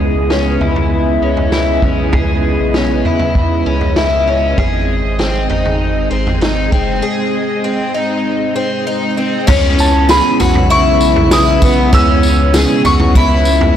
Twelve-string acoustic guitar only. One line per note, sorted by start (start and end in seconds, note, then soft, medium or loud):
0.00 0.30 G#4 medium
0.30 0.60 C#4 medium
0.61 1.22 E4 medium
1.22 1.53 C#4 medium
1.52 1.83 E4 medium
1.83 2.14 C#4 medium
2.13 2.74 G#4 medium
2.75 3.05 C#4 medium
3.06 3.67 E4 medium
3.66 3.97 C#4 medium
3.97 4.27 E4 medium
4.28 4.58 C#4 medium
4.58 5.19 G#4 medium
5.19 5.49 C4 medium
5.49 6.10 D#4 medium
6.11 6.41 C4 medium
6.41 6.72 D#4 medium
6.72 7.03 C4 medium
7.02 7.64 G#4 medium
7.64 7.94 C4 medium
7.94 8.55 D#4 medium
8.56 8.86 C4 medium
8.87 9.17 D#4 medium
9.17 9.47 C4 medium
9.47 10.09 C#4 medium
10.09 10.39 G#4 medium
10.40 10.70 F#4 medium
10.70 11.30 E4 medium
11.32 11.62 E4 medium
11.62 11.92 B3 medium
11.93 12.54 C#4 medium
12.54 12.84 G#4 medium
12.85 13.15 F#4 medium
13.16 13.75 E4 medium